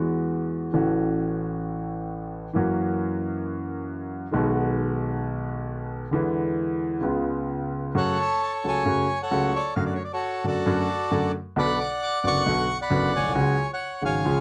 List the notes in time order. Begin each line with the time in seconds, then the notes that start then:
Already playing: E2 E3 G#3 B3 F#4
0.72 A1 A2 E3 A3 C#4 F#4
2.53 F#2 E3 F#3 A#3 C#4
2.58 F#4
4.31 B1 B2 D#3 G#3 B3
4.36 F#4
6.11 E2 D3 E3 G#3 B3
6.15 E4
7.02 C#2 C#3 G#3 B3 F4
7.95 F#2 C#3 F#3 A3 F#4 A4 C#5 F#5
8.22 A5
8.43 A5
8.64 C#2 C#3 F#3 A3 F#4 C#5
8.68 G#5
8.85 F#2 C#3 F#3 A3 F#4
9.23 A4 C#5 F#5
9.31 C#2 C#3 F#3 A3 F#4
9.56 D5
9.75 F#2 D3 F#3 A3 F#4 F5
9.86 D5
9.95 C#5
10.04 D5
10.13 F#4 A4 C#5
10.44 F#2 D3 F#3 A3 F#4 A4 D5
10.66 F#2 D3 F#3 A3 F#4
11.11 F#2 D3 F#3 A3 F#4
11.56 B1 B2 D3 F#3 B3 F#4 D5 F#5 B5
11.80 D6
12.03 D6
12.24 F#1 F#2 D3 F#3 B3 F#4 F#5 C#6
12.46 B1 B2 D3 F#3 B3 F#4
12.82 D5 F#5 B5
12.90 F#1 F#2 D3 F#3 B3 F#4
13.16 A#1 C#5 G#5
13.23 B1
13.29 C2
13.35 C#2 C#3 F#3 G#3 F#4
13.73 C#5 F#5
14.01 G#1 G#2 C#3 F#3 G#3 F#4 C#5 F5 G#5
14.25 C#2 C#3 F3 G#3 F4